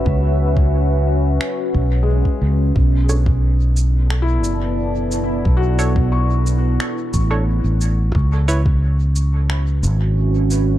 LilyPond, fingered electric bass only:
\new Staff \with { instrumentName = "Fingered electric bass" } { \clef bass \time 4/4 \key b \dorian \tempo 4 = 89 cis,2 r8 b,,8. r16 cis,8 | b,,2~ b,,8 fis,,4. | b,,2 r8 a,,8. a,,8. | cis,2~ cis,8 gis,,4. | }